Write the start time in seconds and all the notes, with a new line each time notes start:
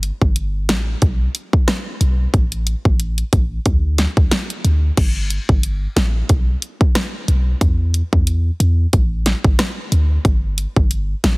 Already playing: G1
0.03 closed hi-hat
0.22 G1, kick
0.36 closed hi-hat
0.69 A1, snare, closed hi-hat
1.02 B1, kick, closed hi-hat
1.35 closed hi-hat
1.53 kick
1.68 cross-stick, snare, closed hi-hat
2.01 B1, closed hi-hat
2.34 A1, kick, closed hi-hat
2.52 closed hi-hat
2.67 closed hi-hat
2.85 A1, kick
3.00 closed hi-hat
3.18 closed hi-hat
3.33 A1, kick, closed hi-hat
3.66 D2, kick, closed hi-hat
3.98 snare, closed hi-hat
4.17 C#2, kick
4.31 snare, closed hi-hat
4.50 closed hi-hat
4.64 D2, closed hi-hat
4.97 G1, kick, closed hi-hat, crash
5.30 closed hi-hat
5.49 G1, kick
5.63 closed hi-hat
5.96 A1, snare, closed hi-hat
6.29 B1, kick, closed hi-hat
6.62 closed hi-hat
6.81 kick
6.95 cross-stick, snare, closed hi-hat
7.28 B1, closed hi-hat
7.61 E2, kick, closed hi-hat
7.94 closed hi-hat
8.13 E2, kick
8.27 closed hi-hat
8.60 E2, closed hi-hat
8.93 A1, kick, closed hi-hat
9.26 snare, closed hi-hat
9.44 G1, kick
9.59 cross-stick, snare, closed hi-hat
9.92 D2, closed hi-hat
10.25 G1, kick, closed hi-hat
10.58 closed hi-hat
10.76 G1, kick
10.91 closed hi-hat
11.24 A1, snare, closed hi-hat